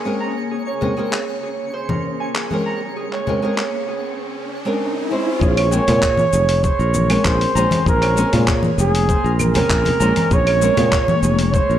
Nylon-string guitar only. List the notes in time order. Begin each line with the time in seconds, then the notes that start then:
0.05 G#3 C4 C#4 A#4
0.81 G#3 C4 C#4 A#4
0.97 G#3 C4 C#4 A#4
2.51 G#3 C4 C#4 A#4
3.27 G#3 C4 C#4 A#4
3.42 G#3 C4 C#4 A#4
4.65 G#3 C4 C#4 A#4
5.11 G#3 C4 C#4 C5
5.71 G#3 C4 C#4 A#4
5.87 G#3 C4 C#4 A#4
7.10 G#3 C4 C#4 A#4
7.55 G#3 C4 C#4 C5
8.16 G#3 C4 C#4 A#4
8.32 G#3 C4 C#4 A#4
9.54 G#3 C4 C#4 A#4
10.00 G#3 C4 C#4 C5
10.61 G#3 C4 C#4 A#4
10.77 G#3 C4 C#4 A#4